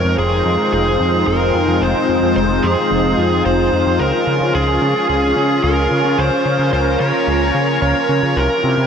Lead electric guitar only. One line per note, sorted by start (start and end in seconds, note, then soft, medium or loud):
0.00 0.15 A#4 loud
0.18 0.72 G#4 medium
0.73 1.27 G#4 medium
1.28 1.84 A#4 medium
1.82 2.35 C5 loud
2.36 2.65 C5 loud
2.64 3.42 G#4 loud
3.46 4.02 C5 loud
4.00 4.54 A#4 loud
4.55 5.06 G#4 medium
5.09 5.63 G#4 medium
5.64 6.20 A#4 medium
6.18 6.69 C5 loud
6.73 7.00 C5 loud
7.00 7.78 C#5 loud
7.82 8.38 C#5 loud
8.37 8.87 A#4 loud